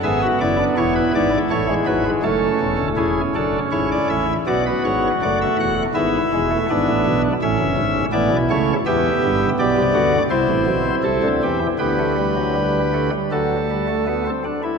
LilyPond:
<<
  \new Staff \with { instrumentName = "Pipe organ" } { \time 4/4 \key a \mixolydian \tempo 4 = 81 << { e''8 d''8 cis''16 b'16 d''8 cis''8 b'8 a'4 | gis'8 a'8 cis''16 d''16 e''8 d''16 b'16 cis''8 d''16 e''16 fis''8 | e''2 e''4 d''8 cis''8 | \key d \mixolydian e''4 d''4 c''4 a'8 g'8 |
b'2 a'4. r8 | } \\ { gis'16 fis'16 e'16 d'16 e'2 cis'4 | e'8 d'8 e'4 fis'2 | e'4 d'4 r4 e'4 | g'4 g'8 fis'8 e'2 |
g'2 r2 | } >> }
  \new Staff \with { instrumentName = "Pipe organ" } { \clef bass \time 4/4 \key a \mixolydian << { b2 a16 gis16 fis16 gis16 a4 | cis'2 b4 a4 | b8 gis16 a16 b4 cis'4 b8 a8 | \key d \mixolydian b2 c'2 |
b16 a16 g16 fis16 g8 a16 g16 fis8 g16 a16 b16 c'16 d'16 e'16 | } \\ { <gis,, gis,>8 <fis,, fis,>8 <e,, e,>8 <gis,, gis,>8 <a,, a,>8 <gis,, gis,>8 <fis,, fis,>8 <e,, e,>16 <d,, d,>16 | <e,, e,>8 <fis,, fis,>8 <gis,, gis,>8 <a,, a,>8 <b,, b,>8 <gis,, gis,>8 <fis,, fis,>8 <e,, e,>8 | <gis,, gis,>8 <e,, e,>8 <gis,, gis,>16 <a,, a,>16 <b,, b,>8 <a,, a,>16 <fis,, fis,>16 <gis,, gis,>8 <a,, a,>16 <b,, b,>16 <cis, cis>8 | <e, e>8 <g,, g,>8 <b,, b,>16 <c, c>16 <d, d>8 <c, c>16 <a,, a,>16 <b,, b,>8 <c, c>16 <d, d>16 <e, e>8 |
<d, d>2 <d, d>4. r8 | } >> }
>>